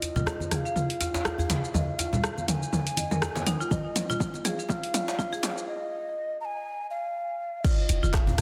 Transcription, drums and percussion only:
0.02 open hi-hat, djembe tone, shaker
0.16 mid tom, high conga, low conga, shaker
0.26 cross-stick, djembe tone, shaker
0.40 high conga, shaker
0.51 cross-stick, open hi-hat, mid tom, djembe tone, shaker
0.66 shaker
0.76 mid tom, djembe tone, shaker
0.90 open hi-hat
1.01 open hi-hat, djembe tone, shaker
1.14 djembe slap, shaker
1.25 cross-stick, djembe tone, shaker
1.38 djembe bass, shaker
1.50 open hi-hat, mid tom, djembe slap, djembe tone, shaker
1.64 shaker
1.74 mid tom, djembe tone, djembe bass, shaker
1.99 open hi-hat, djembe tone, shaker
2.13 high conga, low conga, shaker
2.23 cross-stick, djembe tone, shaker
2.38 high conga, shaker
2.48 open hi-hat, mid tom, djembe tone, shaker
2.63 shaker
2.72 mid tom, djembe tone, shaker
2.87 open hi-hat, shaker
2.97 open hi-hat, high conga, djembe tone, shaker
3.11 mid tom, high conga, shaker
3.22 cross-stick, djembe tone, shaker
3.35 djembe slap, high conga, shaker
3.47 open hi-hat, mid tom, djembe tone, shaker
3.61 shaker
3.71 kick, mid tom, djembe tone, djembe bass, shaker
3.96 open hi-hat, mid tom, djembe tone, shaker
4.09 high conga, low conga, shaker
4.20 kick, mid tom, djembe tone, shaker
4.34 high conga, shaker
4.45 open hi-hat, mid tom, djembe tone, shaker
4.60 shaker
4.69 kick, mid tom, djembe tone, shaker
4.83 open hi-hat
4.94 open hi-hat, mid tom, djembe tone, shaker
5.08 djembe slap, shaker
5.19 kick, mid tom, djembe tone, shaker
5.32 djembe bass, shaker
5.43 open hi-hat, mid tom, djembe slap, djembe tone, shaker
5.58 shaker
7.64 kick, crash, djembe tone, shaker
7.89 open hi-hat, djembe tone, shaker
8.03 high conga, shaker
8.14 kick, cross-stick, clap, djembe tone, shaker
8.27 high conga, low conga, djembe bass, shaker
8.38 djembe tone, low conga

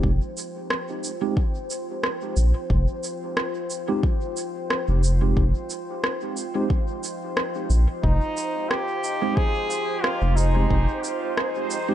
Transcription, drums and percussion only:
0.03 kick
0.37 cabasa
0.70 cross-stick
1.04 cabasa
1.37 kick
1.70 cabasa
2.04 cross-stick
2.37 cabasa
2.70 kick
3.04 cabasa
3.37 cross-stick
3.70 cabasa
4.03 kick
4.37 cabasa
4.70 cross-stick
5.04 cabasa
5.37 kick
5.70 cabasa
6.04 cross-stick
6.37 cabasa
6.70 kick
7.04 cabasa
7.37 cross-stick
7.71 cabasa
8.04 kick
8.37 cabasa
8.71 cross-stick
9.04 cabasa
9.37 kick
9.71 cabasa
10.04 cross-stick
10.37 cabasa
10.70 kick
11.04 cabasa
11.37 cross-stick
11.71 cabasa

